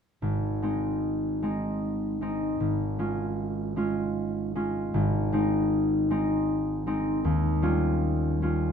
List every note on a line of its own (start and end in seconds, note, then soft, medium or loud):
0.22 2.59 G#1 soft
0.62 1.41 G#3 soft
0.62 1.42 C4 soft
0.62 1.42 D#4 soft
1.42 2.20 G#3 soft
1.42 2.21 C4 soft
1.42 2.21 D#4 soft
2.21 2.98 G#3 soft
2.21 2.63 C4 soft
2.21 2.64 D#4 soft
2.60 4.93 G#1 soft
2.99 3.75 G#3 soft
2.99 3.75 C#4 soft
2.99 3.76 F4 soft
3.76 4.54 G#3 soft
3.76 4.55 C#4 soft
3.76 4.55 F4 soft
4.55 5.31 G#3 soft
4.55 4.97 C#4 soft
4.55 4.97 F4 soft
4.94 7.27 G#1 soft
5.32 6.09 G#3 soft
5.32 6.10 C4 soft
5.32 6.10 D#4 soft
6.10 6.85 G#3 soft
6.10 6.86 C4 soft
6.10 6.86 D#4 soft
6.86 7.27 G#3 soft
6.86 7.27 C4 soft
6.86 8.72 D#4 soft
7.25 8.72 D#2 soft
7.62 8.41 G3 soft
7.62 8.41 C#4 soft
7.62 8.42 F4 soft
8.42 8.72 G3 soft
8.42 8.72 C#4 soft
8.42 8.72 F4 soft